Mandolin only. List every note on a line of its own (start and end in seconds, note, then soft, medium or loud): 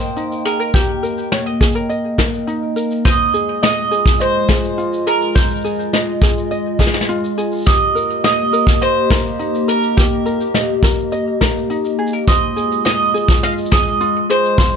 0.00 0.45 C5 medium
0.45 1.28 A#4 medium
3.05 3.62 D#5 loud
3.63 4.21 D#5 medium
4.21 5.07 C5 medium
5.07 5.90 A#4 medium
7.67 8.23 D#5 loud
8.24 8.82 D#5 medium
8.82 9.69 C5 medium
9.69 10.51 A#4 medium
12.28 12.82 D#5 loud
12.85 13.45 D#5 medium
13.43 13.51 F5 medium
13.73 14.26 D#5 medium
14.30 14.77 C5 medium